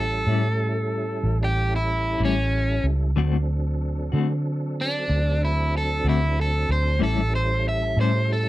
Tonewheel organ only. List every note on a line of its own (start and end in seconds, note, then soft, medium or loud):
0.00 3.12 G3 medium
0.00 3.11 C#4 medium
0.00 3.11 E4 medium
0.00 3.11 A4 medium
3.16 6.97 F#3 medium
3.16 6.97 C4 medium
3.16 6.97 D4 medium
3.16 6.97 A4 medium
6.99 8.49 G3 medium
6.99 8.49 C#4 medium
6.99 8.49 E4 medium
6.99 8.49 A4 medium